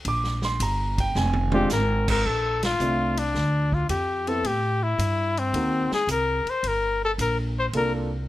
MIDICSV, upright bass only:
0, 0, Header, 1, 3, 480
1, 0, Start_track
1, 0, Key_signature, -2, "major"
1, 0, Tempo, 549451
1, 45, Time_signature, 4, 2, 24, 8
1, 7235, End_track
2, 0, Start_track
2, 0, Title_t, "Upright bass"
2, 0, Program_c, 0, 32
2, 42, Note_on_c, 0, 34, 88
2, 508, Note_off_c, 0, 34, 0
2, 521, Note_on_c, 0, 31, 99
2, 987, Note_off_c, 0, 31, 0
2, 1006, Note_on_c, 0, 29, 93
2, 1469, Note_off_c, 0, 29, 0
2, 1489, Note_on_c, 0, 32, 96
2, 1951, Note_off_c, 0, 32, 0
2, 1969, Note_on_c, 0, 34, 80
2, 2431, Note_off_c, 0, 34, 0
2, 2443, Note_on_c, 0, 36, 87
2, 2908, Note_off_c, 0, 36, 0
2, 2921, Note_on_c, 0, 38, 77
2, 3387, Note_off_c, 0, 38, 0
2, 3400, Note_on_c, 0, 41, 91
2, 3866, Note_off_c, 0, 41, 0
2, 3873, Note_on_c, 0, 45, 77
2, 4342, Note_off_c, 0, 45, 0
2, 4354, Note_on_c, 0, 43, 91
2, 4823, Note_off_c, 0, 43, 0
2, 4831, Note_on_c, 0, 39, 87
2, 5144, Note_off_c, 0, 39, 0
2, 5305, Note_on_c, 0, 36, 85
2, 5621, Note_off_c, 0, 36, 0
2, 5791, Note_on_c, 0, 31, 84
2, 6262, Note_off_c, 0, 31, 0
2, 6274, Note_on_c, 0, 34, 93
2, 6743, Note_off_c, 0, 34, 0
2, 6755, Note_on_c, 0, 36, 83
2, 7224, Note_off_c, 0, 36, 0
2, 7235, End_track
3, 0, Start_track
3, 0, Title_t, "Muted upright bass strokes"
3, 5168, Note_on_c, 9, 29, 37
3, 5256, Note_off_c, 9, 29, 0
3, 5640, Note_on_c, 9, 29, 41
3, 5727, Note_off_c, 9, 29, 0
3, 7235, End_track
0, 0, End_of_file